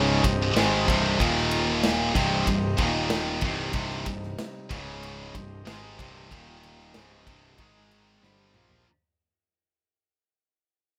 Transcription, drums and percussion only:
0.24 kick medium
0.24 ride medium
0.56 snare loud
0.56 ride medium
0.88 kick loud
0.88 ride medium
1.20 kick loud
1.20 ride loud
1.37 snare soft
1.51 ride medium
1.83 snare loud
1.83 ride loud
2.15 kick loud
2.15 ride medium
2.47 kick loud
2.47 ride loud
2.78 kick loud
2.78 ride medium
3.10 snare loud
3.10 ride loud
3.41 kick loud
3.41 ride medium
3.73 kick loud
3.73 ride loud
3.90 snare soft
4.06 kick loud
4.06 ride medium
4.23 snare soft
4.38 snare loud
4.38 ride loud
4.71 kick loud
4.71 ride medium
5.03 ride loud
5.35 kick loud
5.35 ride medium
5.67 snare loud
5.67 ride loud
5.99 kick loud
5.99 ride medium
6.31 kick loud
6.31 ride loud
6.63 ride medium
6.79 snare soft
6.94 snare loud
6.94 ride loud
7.27 kick loud
7.27 ride medium
7.58 kick loud
7.58 ride loud
7.91 ride medium
8.23 snare medium
8.54 mid tom medium
8.69 floor tom loud

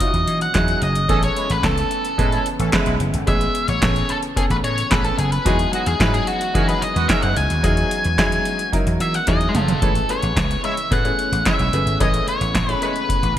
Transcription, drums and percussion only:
0.00 kick loud
0.00 closed hi-hat loud
0.14 closed hi-hat soft
0.28 closed hi-hat medium
0.41 closed hi-hat medium
0.54 kick loud
0.54 snare loud
0.54 clap medium
0.54 closed hi-hat medium
0.68 closed hi-hat soft
0.82 closed hi-hat medium
0.95 closed hi-hat medium
1.09 kick loud
1.09 closed hi-hat medium
1.23 closed hi-hat medium
1.37 closed hi-hat medium
1.50 closed hi-hat medium
1.63 kick loud
1.63 snare loud
1.63 clap loud
1.63 closed hi-hat medium
1.78 closed hi-hat medium
1.91 closed hi-hat medium
2.05 closed hi-hat soft
2.18 kick loud
2.18 closed hi-hat medium
2.32 closed hi-hat soft
2.46 closed hi-hat medium
2.60 closed hi-hat medium
2.72 kick loud
2.72 snare loud
2.72 clap loud
2.72 closed hi-hat medium
2.86 closed hi-hat medium
3.00 closed hi-hat medium
3.14 closed hi-hat medium
3.27 kick loud
3.27 closed hi-hat medium
3.41 closed hi-hat medium
3.55 closed hi-hat medium
3.68 closed hi-hat soft
3.82 kick loud
3.82 snare loud
3.82 clap loud
3.82 closed hi-hat loud
3.96 closed hi-hat soft
4.09 closed hi-hat medium
4.23 closed hi-hat medium
4.37 kick loud
4.37 closed hi-hat loud
4.50 closed hi-hat soft
4.64 closed hi-hat medium
4.78 closed hi-hat medium
4.91 kick loud
4.91 snare loud
4.91 clap loud
4.91 closed hi-hat medium
5.05 closed hi-hat medium
5.19 closed hi-hat medium
5.32 closed hi-hat medium
5.46 kick loud
5.46 closed hi-hat loud
5.59 closed hi-hat medium
5.73 closed hi-hat medium
5.86 closed hi-hat medium
6.00 kick loud
6.00 snare loud
6.00 clap medium
6.00 closed hi-hat medium
6.14 closed hi-hat medium
6.27 closed hi-hat medium
6.41 closed hi-hat medium
6.55 kick loud
6.55 closed hi-hat loud
6.69 closed hi-hat soft
6.82 closed hi-hat medium
6.96 closed hi-hat medium
7.09 kick loud
7.09 snare loud
7.09 clap loud
7.09 closed hi-hat medium
7.23 closed hi-hat medium
7.36 closed hi-hat medium
7.50 closed hi-hat medium
7.64 kick loud
7.64 closed hi-hat medium
7.77 closed hi-hat medium
7.91 closed hi-hat medium
8.04 closed hi-hat soft
8.18 kick loud
8.18 snare loud
8.18 clap loud
8.18 closed hi-hat medium
8.32 closed hi-hat medium
8.45 closed hi-hat medium
8.59 closed hi-hat medium
8.73 kick loud
8.73 closed hi-hat loud
8.87 closed hi-hat medium
9.00 closed hi-hat medium
9.14 closed hi-hat medium
9.27 kick loud
9.27 snare medium
9.27 closed hi-hat medium
9.41 closed hi-hat medium
9.55 closed hi-hat medium
9.55 mid tom loud
9.68 closed hi-hat medium
9.68 floor tom medium
9.82 kick loud
9.82 closed hi-hat loud
9.95 closed hi-hat medium
10.09 closed hi-hat medium
10.23 closed hi-hat soft
10.36 kick loud
10.36 snare loud
10.36 clap medium
10.36 closed hi-hat medium
10.51 closed hi-hat medium
10.64 closed hi-hat medium
10.77 closed hi-hat medium
10.91 kick loud
10.91 closed hi-hat loud
11.05 closed hi-hat soft
11.19 closed hi-hat medium
11.33 closed hi-hat medium
11.45 kick loud
11.45 snare loud
11.45 clap medium
11.45 closed hi-hat medium
11.59 closed hi-hat medium
11.73 closed hi-hat medium
11.87 closed hi-hat medium
12.00 kick loud
12.00 closed hi-hat medium
12.14 closed hi-hat medium
12.28 closed hi-hat medium
12.41 closed hi-hat medium
12.55 kick loud
12.55 snare loud
12.55 clap loud
12.55 closed hi-hat medium
12.69 closed hi-hat medium
12.82 closed hi-hat medium
12.96 closed hi-hat soft
13.09 kick loud
13.09 closed hi-hat loud
13.23 closed hi-hat medium

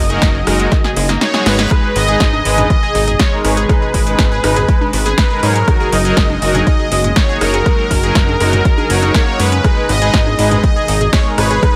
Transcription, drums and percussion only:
0.10 closed hi-hat medium
0.22 kick loud
0.22 snare loud
0.22 closed hi-hat medium
0.47 cross-stick medium
0.47 open hi-hat loud
0.60 closed hi-hat medium
0.72 kick loud
0.72 snare medium
0.72 closed hi-hat medium
0.84 snare medium
0.97 open hi-hat loud
1.09 snare medium
1.09 closed hi-hat medium
1.21 snare medium
1.21 closed hi-hat medium
1.34 snare medium
1.46 snare loud
1.46 open hi-hat loud
1.59 snare medium
1.59 closed hi-hat medium
1.71 kick loud
1.71 cross-stick medium
1.71 closed hi-hat medium
1.96 open hi-hat loud
2.08 closed hi-hat medium
2.20 kick loud
2.20 snare loud
2.20 closed hi-hat medium
2.33 high conga medium
2.45 open hi-hat loud
2.58 closed hi-hat medium
2.58 mid tom loud
2.58 high conga medium
2.70 kick loud
2.70 closed hi-hat medium
2.95 open hi-hat loud
3.08 closed hi-hat medium
3.08 mid tom medium
3.19 kick loud
3.19 snare loud
3.19 closed hi-hat medium
3.45 cross-stick medium
3.45 open hi-hat loud
3.57 closed hi-hat medium
3.69 kick loud
3.69 cross-stick medium
3.69 closed hi-hat medium
3.94 kick medium
3.94 open hi-hat loud
4.07 closed hi-hat medium
4.19 kick loud
4.19 snare loud
4.19 closed hi-hat medium
4.44 cross-stick medium
4.44 open hi-hat loud
4.56 closed hi-hat medium
4.56 mid tom loud
4.69 kick loud
4.69 closed hi-hat medium
4.81 high conga loud
4.93 open hi-hat loud
5.06 snare soft
5.06 closed hi-hat medium
5.18 kick loud
5.18 snare loud
5.18 closed hi-hat medium
5.43 open hi-hat loud
5.56 closed hi-hat medium
5.68 kick loud
5.68 cross-stick medium
5.68 closed hi-hat medium
5.92 open hi-hat loud
6.05 closed hi-hat medium
6.17 kick loud
6.17 snare loud
6.17 closed hi-hat medium
6.30 high conga medium
6.42 open hi-hat loud
6.55 closed hi-hat medium
6.55 mid tom medium
6.55 high conga medium
6.67 kick loud
6.67 closed hi-hat medium
6.92 open hi-hat loud
7.04 closed hi-hat medium
7.04 mid tom medium
7.16 kick loud
7.16 snare loud
7.16 closed hi-hat medium
7.41 cross-stick medium
7.41 open hi-hat loud
7.54 closed hi-hat medium
7.66 kick loud
7.66 cross-stick medium
7.66 closed hi-hat medium
7.91 kick medium
7.91 open hi-hat loud
7.91 high conga medium
8.03 closed hi-hat medium
8.15 kick loud
8.15 snare loud
8.15 closed hi-hat medium
8.28 high conga medium
8.40 cross-stick medium
8.40 open hi-hat loud
8.53 closed hi-hat medium
8.53 mid tom medium
8.65 kick loud
8.65 closed hi-hat soft
8.78 high conga medium
8.90 open hi-hat loud
9.02 snare soft
9.02 closed hi-hat medium
9.14 kick loud
9.14 snare loud
9.14 closed hi-hat medium
9.40 open hi-hat loud
9.52 closed hi-hat medium
9.64 kick loud
9.64 cross-stick medium
9.64 closed hi-hat medium
9.89 open hi-hat loud
10.02 closed hi-hat medium
10.14 kick loud
10.14 snare loud
10.14 closed hi-hat soft
10.27 high conga medium
10.39 open hi-hat loud
10.51 closed hi-hat medium
10.51 mid tom loud
10.51 high conga medium
10.64 kick loud
10.64 closed hi-hat soft
10.88 open hi-hat loud
11.01 closed hi-hat medium
11.01 mid tom medium
11.13 kick loud
11.13 snare loud
11.13 closed hi-hat medium
11.38 cross-stick medium
11.38 open hi-hat loud
11.51 closed hi-hat medium
11.63 kick loud
11.63 cross-stick medium
11.63 closed hi-hat medium

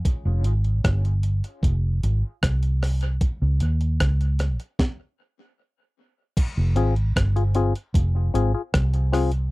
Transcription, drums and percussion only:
0.05 kick loud
0.05 closed hi-hat medium
0.44 closed hi-hat medium
0.65 closed hi-hat soft
0.84 kick loud
0.84 cross-stick loud
0.84 closed hi-hat medium
1.05 closed hi-hat soft
1.23 closed hi-hat medium
1.44 closed hi-hat medium
1.63 kick loud
1.63 closed hi-hat medium
2.03 closed hi-hat medium
2.43 kick loud
2.43 cross-stick loud
2.43 closed hi-hat loud
2.63 closed hi-hat soft
2.83 cross-stick medium
2.83 open hi-hat medium
3.01 closed hi-hat soft
3.21 kick loud
3.21 closed hi-hat medium
3.60 closed hi-hat medium
3.81 closed hi-hat soft
4.00 kick loud
4.00 cross-stick loud
4.00 closed hi-hat medium
4.21 closed hi-hat soft
4.39 cross-stick medium
4.39 closed hi-hat medium
4.60 closed hi-hat soft
4.79 kick loud
4.79 snare medium
6.37 kick loud
6.37 closed hi-hat medium
6.37 crash loud
6.76 closed hi-hat medium
6.96 closed hi-hat soft
7.16 kick loud
7.16 cross-stick loud
7.16 closed hi-hat medium
7.37 closed hi-hat soft
7.55 closed hi-hat medium
7.76 closed hi-hat medium
7.94 kick loud
7.94 closed hi-hat loud
8.35 closed hi-hat medium
8.74 kick loud
8.74 cross-stick loud
8.74 closed hi-hat loud
8.94 closed hi-hat medium
9.13 cross-stick medium
9.13 open hi-hat medium
9.32 closed hi-hat medium

